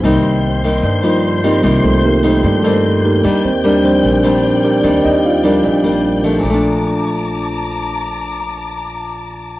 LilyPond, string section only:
\new Staff \with { instrumentName = "String section" } { \time 4/4 \key bes \major \tempo 4 = 150 << { g'''1~ | g'''1~ | g'''1~ | g'''1 |
<a'' bes'' d'''>1~ | <a'' bes'' d'''>1 | } \\ { <c'' c'''>1~ | <c'' c'''>1 | <d'' g''>1~ | <d'' g''>1 |
r1 | r1 | } >> }